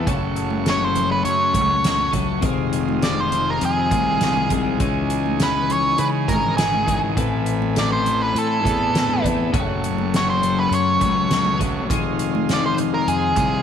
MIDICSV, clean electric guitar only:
0, 0, Header, 1, 2, 480
1, 0, Start_track
1, 0, Tempo, 591133
1, 54, Time_signature, 4, 2, 24, 8
1, 11063, End_track
2, 0, Start_track
2, 0, Title_t, "Clean electric guitar"
2, 0, Program_c, 0, 27
2, 44, Note_on_c, 0, 42, 85
2, 53, Note_on_c, 0, 49, 87
2, 56, Note_on_c, 0, 54, 85
2, 59, Note_on_c, 0, 57, 95
2, 68, Note_on_c, 0, 61, 97
2, 70, Note_on_c, 0, 69, 92
2, 1710, Note_off_c, 0, 69, 0
2, 1714, Note_off_c, 0, 61, 0
2, 1717, Note_off_c, 0, 57, 0
2, 1720, Note_off_c, 0, 42, 0
2, 1720, Note_on_c, 0, 69, 67
2, 1723, Note_off_c, 0, 54, 0
2, 1724, Note_off_c, 0, 49, 0
2, 1724, Note_on_c, 0, 61, 76
2, 1727, Note_on_c, 0, 57, 76
2, 1733, Note_on_c, 0, 54, 68
2, 1741, Note_on_c, 0, 42, 59
2, 1742, Note_on_c, 0, 49, 60
2, 1951, Note_off_c, 0, 42, 0
2, 1955, Note_on_c, 0, 41, 84
2, 1956, Note_off_c, 0, 69, 0
2, 1957, Note_off_c, 0, 49, 0
2, 1958, Note_off_c, 0, 61, 0
2, 1959, Note_off_c, 0, 57, 0
2, 1960, Note_on_c, 0, 48, 92
2, 1962, Note_off_c, 0, 54, 0
2, 1967, Note_on_c, 0, 51, 86
2, 1975, Note_on_c, 0, 56, 92
2, 1978, Note_on_c, 0, 60, 90
2, 1981, Note_on_c, 0, 68, 84
2, 3635, Note_off_c, 0, 41, 0
2, 3638, Note_off_c, 0, 48, 0
2, 3638, Note_off_c, 0, 68, 0
2, 3641, Note_off_c, 0, 51, 0
2, 3645, Note_off_c, 0, 56, 0
2, 3647, Note_off_c, 0, 60, 0
2, 3647, Note_on_c, 0, 68, 64
2, 3657, Note_on_c, 0, 60, 72
2, 3662, Note_on_c, 0, 56, 70
2, 3668, Note_on_c, 0, 51, 63
2, 3671, Note_on_c, 0, 48, 68
2, 3675, Note_on_c, 0, 41, 62
2, 3880, Note_off_c, 0, 68, 0
2, 3882, Note_off_c, 0, 48, 0
2, 3885, Note_off_c, 0, 60, 0
2, 3885, Note_on_c, 0, 49, 81
2, 3888, Note_off_c, 0, 56, 0
2, 3891, Note_off_c, 0, 51, 0
2, 3894, Note_off_c, 0, 41, 0
2, 3896, Note_on_c, 0, 52, 89
2, 3906, Note_on_c, 0, 56, 79
2, 3912, Note_on_c, 0, 63, 96
2, 5559, Note_off_c, 0, 49, 0
2, 5560, Note_off_c, 0, 63, 0
2, 5564, Note_off_c, 0, 52, 0
2, 5569, Note_off_c, 0, 56, 0
2, 5570, Note_on_c, 0, 63, 69
2, 5585, Note_on_c, 0, 56, 68
2, 5589, Note_on_c, 0, 52, 63
2, 5598, Note_on_c, 0, 49, 62
2, 5801, Note_off_c, 0, 63, 0
2, 5807, Note_off_c, 0, 52, 0
2, 5809, Note_off_c, 0, 56, 0
2, 5811, Note_on_c, 0, 45, 75
2, 5813, Note_off_c, 0, 49, 0
2, 5816, Note_on_c, 0, 52, 84
2, 5820, Note_on_c, 0, 57, 86
2, 5827, Note_on_c, 0, 60, 89
2, 5829, Note_on_c, 0, 64, 91
2, 5835, Note_on_c, 0, 71, 87
2, 7480, Note_off_c, 0, 45, 0
2, 7480, Note_off_c, 0, 71, 0
2, 7483, Note_off_c, 0, 52, 0
2, 7485, Note_off_c, 0, 57, 0
2, 7486, Note_off_c, 0, 64, 0
2, 7488, Note_off_c, 0, 60, 0
2, 7490, Note_on_c, 0, 71, 76
2, 7496, Note_on_c, 0, 64, 73
2, 7504, Note_on_c, 0, 60, 65
2, 7509, Note_on_c, 0, 57, 69
2, 7513, Note_on_c, 0, 52, 57
2, 7514, Note_on_c, 0, 45, 58
2, 7720, Note_off_c, 0, 71, 0
2, 7722, Note_off_c, 0, 45, 0
2, 7723, Note_off_c, 0, 64, 0
2, 7725, Note_on_c, 0, 42, 84
2, 7727, Note_off_c, 0, 60, 0
2, 7728, Note_off_c, 0, 52, 0
2, 7730, Note_off_c, 0, 57, 0
2, 7731, Note_on_c, 0, 49, 81
2, 7736, Note_on_c, 0, 54, 93
2, 7741, Note_on_c, 0, 57, 87
2, 7749, Note_on_c, 0, 61, 103
2, 7751, Note_on_c, 0, 66, 101
2, 9396, Note_off_c, 0, 42, 0
2, 9399, Note_off_c, 0, 49, 0
2, 9401, Note_off_c, 0, 61, 0
2, 9401, Note_off_c, 0, 66, 0
2, 9402, Note_off_c, 0, 54, 0
2, 9404, Note_off_c, 0, 57, 0
2, 9411, Note_on_c, 0, 61, 71
2, 9411, Note_on_c, 0, 66, 71
2, 9421, Note_on_c, 0, 57, 69
2, 9422, Note_on_c, 0, 54, 64
2, 9430, Note_on_c, 0, 49, 58
2, 9433, Note_on_c, 0, 42, 58
2, 9640, Note_off_c, 0, 61, 0
2, 9640, Note_off_c, 0, 66, 0
2, 9645, Note_off_c, 0, 57, 0
2, 9646, Note_off_c, 0, 54, 0
2, 9648, Note_off_c, 0, 42, 0
2, 9649, Note_off_c, 0, 49, 0
2, 9651, Note_on_c, 0, 41, 86
2, 9657, Note_on_c, 0, 48, 92
2, 9667, Note_on_c, 0, 51, 89
2, 9673, Note_on_c, 0, 56, 81
2, 9674, Note_on_c, 0, 63, 93
2, 11063, Note_off_c, 0, 41, 0
2, 11063, Note_off_c, 0, 48, 0
2, 11063, Note_off_c, 0, 51, 0
2, 11063, Note_off_c, 0, 56, 0
2, 11063, Note_off_c, 0, 63, 0
2, 11063, End_track
0, 0, End_of_file